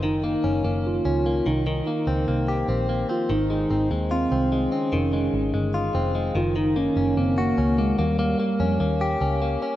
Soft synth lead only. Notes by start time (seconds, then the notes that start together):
0.04 D#4
0.25 D#4
0.87 F4
1.47 D#4
3.11 F4
3.32 D#4
3.51 D#4
4.12 C4
4.73 C#4
6.37 F4
6.58 D#4
6.77 C#4
7.18 C4
7.38 A#3
7.79 G#3
7.99 G3